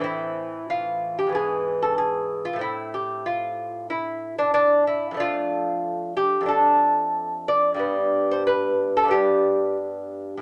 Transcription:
X:1
M:4/4
L:1/16
Q:1/4=93
K:Am
V:1 name="Lute"
E4 F3 G ^G3 A G3 F | E2 G2 F4 E3 D D2 E2 | [K:Ddor] F6 G2 A6 d2- | d3 c B3 A G4 z4 |]
V:2 name="Lute" clef=bass
[A,,E,C]8 [^G,,E,B,]8 | [A,,A,C]16 | [K:Ddor] [F,,A,D]8 [F,,A,D]8 | [G,,G,B,]8 [G,,G,B,]8 |]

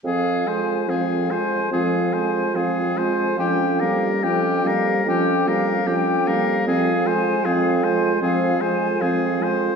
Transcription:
X:1
M:4/4
L:1/8
Q:1/4=73
K:Fm
V:1 name="Flute"
f a f a f a f a | g f g f g f g f | f a f a f a f a |]
V:2 name="Oboe"
A c A c A c A c | G B G B G B G B | A c A c A c A c |]
V:3 name="Clarinet"
C F C F C F C F | D B, D B, D B, D B, | C F C F C F C F |]
V:4 name="French horn" clef=bass
F, A, F, A, F, A, F, A, | F, G, F, G, F, G, F, G, | F, A, F, A, F, A, F, A, |]
V:5 name="Bassoon" clef=bass
F,,2 F,,2 F,,2 F,,2 | F,,2 F,,2 F,,2 F,,2 | F,,2 F,,2 F,,2 F,,2 |]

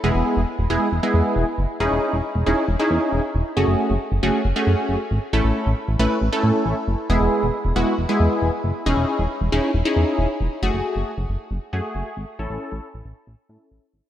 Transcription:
X:1
M:4/4
L:1/16
Q:1/4=136
K:F#dor
V:1 name="Analog polysynth"
[G,B,EG]3 z3 [G,B,EG]2 z [G,B,EG]4 z3 | [CDEG]3 z3 [CDEG]2 z [CDEG]4 z3 | [A,CFG]3 z3 [A,CFG]2 z [A,CFG]4 z3 | [A,CEA]3 z3 [A,CEB]2 z [A,CEA]4 z3 |
[G,B,EG]3 z3 [G,B,EF]2 z [G,B,EG]4 z3 | [CDEG]3 z3 [CDEG]2 z [CDEG]4 z3 | [A,FG]4 z6 [A,FG]3 z3 | [CEA]4 z6 [CEA]3 z3 |]
V:2 name="Analog synth bass" clef=bass
E,,, E,,, z E,,, z E,,, E,,, z E,,, z E,, z E,,, z F,,, z | E,,, E,,, z E,,, z E,,, E,,, z E,,, z E,, z E,,, z E,,, z | F,,, F,,, z F,,, z F,,, F,,, z F,,, z F,, z F,,, z G,,, z | A,,, A,,, z A,,, z A,,, A,,, z A,,, z A,, z A,,, z F,,, z |
E,,, E,,, z E,,, z E,,, E,,, z E,,, z E,, z E,,, z F,,, z | E,,, E,,, z E,,, z E,,, E,,, z E,,, z E,, z E,,, z E,,, z | F,,, F,,, z F,,, z F,,, F,,, z F,,, z F,, z F,,, z G,,, z | A,,, A,,, z A,,, z A,,, A,,, z A,,, z A,, z A,,, z G,,, z |]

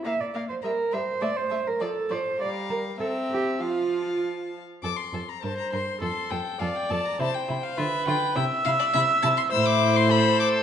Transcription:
X:1
M:2/4
L:1/16
Q:1/4=102
K:F
V:1 name="Violin"
b2 b2 b2 b2 | a2 a2 a2 a2 | b4 b4 | a6 z2 |
d' c'2 b a b c'2 | c'2 g2 f g a b | a g2 f e2 g2 | g2 f d e2 a c' |
[K:Am] e' d'2 c' b2 d'2 |]
V:2 name="Violin"
f2 f2 e2 e2 | e2 e2 d2 d2 | f4 e4 | f6 z2 |
A2 A2 B2 B2 | A2 A2 A2 A2 | E2 E2 F2 F2 | E2 E2 E2 E2 |
[K:Am] E4 A4 |]
V:3 name="Viola"
B,2 B,2 G,2 G,2 | A,2 A,2 F,2 F,2 | G,4 C4 | F,6 z2 |
z4 c4 | A4 d4 | c4 =B4 | e8 |
[K:Am] c8 |]
V:4 name="Cello" clef=bass
e d2 c B2 c2 | d c2 B A2 c2 | d2 B2 A2 G2 | F4 z4 |
F,,2 F,,2 G,,2 G,,2 | F,,2 F,,2 F,,2 F,,2 | C,2 C,2 D,2 D,2 | C,2 C,2 C,2 C,2 |
[K:Am] A,,8 |]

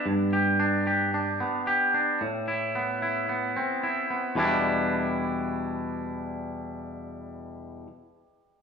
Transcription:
X:1
M:4/4
L:1/8
Q:1/4=111
K:Em
V:1 name="Clean electric guitar"
G,, G D G D B, G D | A,, E B, E B, C E B, | [E,,B,,E,G,DE]8- | [E,,B,,E,G,DE]8 |]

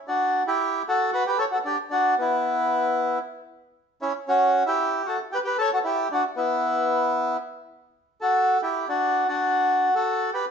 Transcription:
X:1
M:4/4
L:1/16
Q:1/4=114
K:D
V:1 name="Bandoneon"
[DF]3 [EG]3 [FA]2 [FB] [GB] [Ac] [FA] [DG]2 [DF]2 | [B,E]8 z6 [CE]2 | [CF]3 [EG]3 [FA]2 [GB] [GB] [Ac] [FA] [EG]2 [DF]2 | [B,E]8 z6 [FA]2- |
[FA] [EG]2 [DF]3 [DF]4- [DF] [FA]3 [GB]2 |]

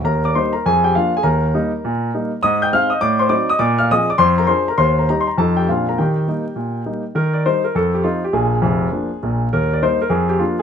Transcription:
X:1
M:4/4
L:1/8
Q:"Swing" 1/4=203
K:Eb
V:1 name="Grand piano"
[Bb] [dd'] [cc'] [Bb] [Aa] [Gg] [Ff] [Aa] | [Bb]6- [Bb] z | [ee'] [gg'] [ff'] [ee'] [dd'] [cc'] [dd'] [ee'] | [dd'] [ff'] [ee'] [dd'] [cc'] [Bb] [cc'] [Bb] |
[cc'] [Bb] (3b c' b [=A=a] [Gg] [Ff] [Bb] | [Gg]6- [Gg] z | B d c B =A G F G | A6- A z |
B d c B A G F z |]
V:2 name="Grand piano" clef=bass
E,,2 [G,B,E]2 F,,2 [F,B,D]2 | E,,2 [G,B,E]2 B,,2 [G,B,E]2 | A,,2 [A,CE]2 =A,,2 [^F,CE]2 | B,,2 [F,CA]2 F,,2 [F,DA]2 |
E,,2 [G,EG]2 [F,,F,CE]2 [B,,A,CD]2 | E,2 [G,B,E]2 B,,2 [G,B,E]2 | E,2 [G,E]2 F,,2 [F,CE]2 | [B,,,B,,]2 [F,,,F,,]2 [F,B,D]2 [B,,,B,,]2 |
E,,2 [G,B,E]2 F,,2 [F,B,D]2 |]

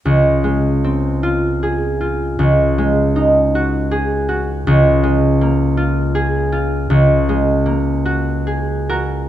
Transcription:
X:1
M:3/4
L:1/8
Q:1/4=79
K:Db
V:1 name="Harp"
D,, A, C F A F | D,, A, E G A G | D,, A, B, F A F | D,, A, B, G A [GB] |]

